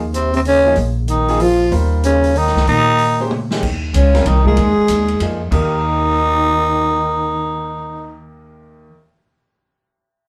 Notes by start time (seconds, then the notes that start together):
Already playing: D#2
0.14 C3 C4, closed hi-hat
0.34 C3 C4, open hi-hat
0.45 C#3 C#4, open hi-hat
0.66 F3 A#3 D#4 G#4
0.76 A#1, open hi-hat
1.08 D#3 D#4, closed hi-hat
1.28 F3 A#3 D#4 G#4, open hi-hat
1.40 F3 F4, open hi-hat
1.72 D#2 G3 F4 A#4 C5, open hi-hat
2.03 C#3 C#4, closed hi-hat
2.24 open hi-hat
2.36 D#3 D#4, open hi-hat
2.47 snare
2.55 C#2, snare
2.67 A#2 D#3 D#4, open hi-hat
2.99 open hi-hat
3.20 G#3 C#4 G4 C5
3.31 mid tom
3.51 D#3 G#3 C#4 G4, snare
3.62 D#2, kick, crash
3.93 C#2 C#3 C#4, hi-hat pedal, ride
4.14 G3 C4 F4 A#4, snare, ride
4.26 C2 D#3 D#4, ride
4.44 F3 G#3 A#3 D#4 G#4 A#4, kick
4.57 D#2, ride
4.77 muted upright bass stroke
4.88 D#2, hi-hat pedal, ride
5.08 ride
5.20 F2 F3 A#3 D#4 G#4, ride
5.51 D#2 D#3 A#3 D#4 G4 A#4, kick, crash